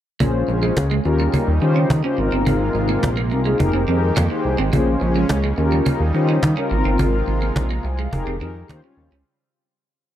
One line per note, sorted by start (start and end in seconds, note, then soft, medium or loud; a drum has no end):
0.20 0.43 A#1 loud
0.20 1.04 C#3 medium
0.20 1.04 G#3 medium
0.20 8.65 A#3 medium
0.20 0.29 A#3 medium
0.20 0.74 C#4 medium
0.20 1.04 C#4 medium
0.20 0.74 F4 medium
0.20 0.74 G#4 medium
0.20 0.75 C5 medium
0.20 cajon bass medium
0.48 0.72 A#1 loud
0.48 muted clean electric guitar stroke soft
0.48 cajon slap soft
0.63 0.72 G#3 medium
0.63 cajon slap soft
0.77 1.00 C#2 loud
0.77 cajon bass loud
0.77 cajon slap medium
0.77 cajon slap loud
0.91 1.00 G#3 medium
0.91 cajon slap soft
1.05 1.28 D#2 loud
1.05 2.17 C#3 medium
1.05 2.17 G3 medium
1.05 1.50 C#4 medium
1.05 2.17 D#4 medium
1.05 1.50 F4 medium
1.05 1.51 G4 medium
1.05 1.51 A#4 loud
1.05 muted clean electric guitar stroke soft
1.05 cajon slap soft
1.20 1.29 G3 medium
1.20 cajon slap soft
1.34 1.43 A#3 medium
1.34 cajon bass loud
1.48 1.59 D#2 loud
1.61 1.85 D#3 loud
1.61 1.89 C#4 medium
1.61 1.89 F4 medium
1.61 1.89 G4 medium
1.61 1.89 C5 loud
1.61 muted clean electric guitar stroke soft
1.61 cajon slap soft
1.76 1.85 C#4 medium
1.76 cajon slap soft
1.90 2.02 D#3 loud
1.90 cajon bass loud
1.90 cajon slap loud
2.04 2.18 C#4 medium
2.04 2.13 C#4 medium
2.04 2.18 F4 medium
2.04 2.18 G4 medium
2.04 2.19 C5 medium
2.18 2.30 G#1 loud
2.18 3.58 C3 medium
2.18 3.58 G#3 medium
2.18 3.09 C4 medium
2.18 3.09 D#4 medium
2.18 3.59 F4 medium
2.18 3.09 F4 medium
2.18 3.09 A#4 loud
2.18 muted clean electric guitar stroke soft
2.32 2.44 G1 medium
2.32 2.41 C4 medium
2.32 cajon slap soft
2.46 2.70 G#1 loud
2.46 2.56 G#3 medium
2.46 cajon bass medium
2.75 2.98 G#1 loud
2.75 muted clean electric guitar stroke soft
2.75 cajon slap soft
2.89 2.98 A#3 medium
2.89 cajon slap soft
3.03 3.33 A#1 loud
3.03 cajon bass loud
3.03 cajon slap medium
3.03 cajon slap loud
3.17 3.26 A#3 medium
3.17 cajon slap soft
3.31 3.55 C2 medium
3.31 3.40 C4 medium
3.31 3.41 D#4 medium
3.31 3.41 F4 medium
3.31 3.41 A#4 medium
3.31 muted clean electric guitar stroke soft
3.31 cajon slap soft
3.45 3.55 G#3 medium
3.45 3.59 C4 medium
3.45 3.58 D#4 medium
3.45 3.59 F4 medium
3.45 3.59 G#4 medium
3.45 cajon slap soft
3.59 3.72 F1 loud
3.59 4.72 D#3 medium
3.59 5.56 G#3 medium
3.59 3.82 D#4 medium
3.59 3.82 G4 medium
3.59 4.72 G4 medium
3.59 3.82 G#4 medium
3.59 3.83 A#4 loud
3.59 muted clean electric guitar stroke soft
3.59 cajon bass loud
3.73 3.85 F1 medium
3.73 3.83 C4 medium
3.73 cajon slap soft
3.87 4.11 F2 loud
3.87 3.97 C4 medium
3.87 4.15 D#4 medium
3.87 4.15 G4 medium
3.87 4.15 G#4 medium
3.87 4.15 A#4 loud
3.87 cajon slap soft
4.03 cajon slap soft
4.16 4.28 F2 loud
4.16 4.25 A#3 loud
4.16 cajon bass loud
4.16 cajon slap medium
4.16 cajon slap loud
4.30 4.57 D#4 medium
4.30 4.58 G4 medium
4.30 4.58 G#4 medium
4.30 4.58 C5 medium
4.30 muted clean electric guitar stroke soft
4.45 4.56 C2 loud
4.58 4.71 G#1 medium
4.58 4.68 C4 medium
4.58 cajon slap soft
4.72 4.96 A#1 loud
4.72 5.57 C#3 medium
4.72 4.82 A#3 medium
4.72 5.27 C#4 medium
4.72 5.57 C#4 medium
4.72 5.27 F4 medium
4.72 5.27 G#4 medium
4.72 5.27 C5 medium
4.72 cajon bass loud
5.01 5.25 A#1 loud
5.01 muted clean electric guitar stroke soft
5.01 cajon slap soft
5.16 5.25 G#3 medium
5.16 cajon slap soft
5.29 5.53 C#2 loud
5.29 cajon bass loud
5.29 cajon slap medium
5.29 cajon slap loud
5.44 5.53 G#3 medium
5.44 cajon slap soft
5.58 5.81 D#2 medium
5.58 6.70 C#3 medium
5.58 6.70 G3 medium
5.58 6.03 C#4 medium
5.58 6.70 D#4 medium
5.58 6.03 F4 medium
5.58 6.03 G4 medium
5.58 6.04 A#4 loud
5.58 muted clean electric guitar stroke soft
5.58 cajon slap soft
5.72 5.81 G3 medium
5.72 cajon slap soft
5.86 5.95 A#3 medium
5.86 cajon bass loud
6.00 6.12 D#2 loud
6.14 6.38 D#3 medium
6.14 6.41 C#4 medium
6.14 6.42 F4 medium
6.14 6.42 G4 medium
6.14 6.42 C5 medium
6.14 muted clean electric guitar stroke soft
6.14 cajon slap soft
6.29 6.38 C#4 medium
6.29 cajon slap soft
6.43 6.55 D#3 loud
6.43 cajon bass loud
6.43 cajon slap medium
6.43 cajon slap loud
6.57 6.66 C#4 medium
6.57 6.71 C#4 medium
6.57 6.71 F4 medium
6.57 6.72 G4 medium
6.57 6.71 A#4 loud
6.71 6.83 G#1 loud
6.71 8.11 C3 medium
6.71 8.67 G#3 medium
6.71 6.78 A#3 medium
6.71 7.62 D#4 medium
6.71 8.11 F4 medium
6.71 7.62 F4 medium
6.71 7.57 A#4 loud
6.71 muted clean electric guitar stroke soft
6.78 7.65 C4 medium
6.85 6.97 G1 medium
6.85 6.94 C4 medium
6.85 cajon slap soft
6.99 7.23 G#1 loud
6.99 7.09 G#3 medium
6.99 cajon bass medium
7.13 cajon slap soft
7.28 7.51 G#1 medium
7.28 muted clean electric guitar stroke soft
7.28 cajon slap soft
7.42 7.51 A#3 medium
7.42 cajon slap soft
7.56 7.79 A#1 loud
7.56 7.83 A#5 medium
7.56 cajon bass loud
7.56 cajon slap medium
7.56 cajon slap loud
7.71 7.79 A#3 medium
7.84 8.07 C2 medium
7.84 7.98 C5 medium
7.84 7.98 G#5 medium
7.84 muted clean electric guitar stroke soft
7.84 cajon slap soft
7.99 8.08 G#3 medium
7.99 8.12 G#4 medium
7.99 8.26 F5 medium
7.99 cajon slap soft
8.12 8.24 F1 loud
8.12 8.69 D#3 medium
8.12 8.35 D#4 medium
8.12 8.69 G4 medium
8.12 8.35 G4 medium
8.12 8.35 G#4 medium
8.12 8.36 A#4 loud
8.12 muted clean electric guitar stroke soft
8.12 cajon bass loud
8.27 8.42 F1 medium
8.27 8.36 C4 medium
8.41 8.64 F2 loud
8.41 8.50 C4 medium
8.41 8.68 D#4 medium
8.41 8.68 G4 medium
8.41 8.68 G#4 medium
8.41 8.68 A#4 loud
8.41 cajon slap soft
8.56 cajon slap soft
8.69 9.25 C#3 medium
8.69 8.81 D#3 loud
8.69 9.25 G3 medium
8.69 8.79 A#3 medium
8.69 9.25 C4 medium
8.69 8.80 C#4 medium
8.69 9.25 F4 medium
8.69 8.81 F4 medium
8.69 8.81 G4 medium
8.69 8.81 C5 loud
8.69 cajon bass loud
8.69 cajon slap medium
8.69 cajon slap loud
8.83 9.10 C#4 medium
8.83 9.10 F4 medium
8.83 9.11 G4 medium
8.83 9.11 C#5 medium
8.83 muted clean electric guitar stroke soft
8.97 9.09 D#2 loud
9.12 9.23 C#2 medium
9.12 9.21 C#4 medium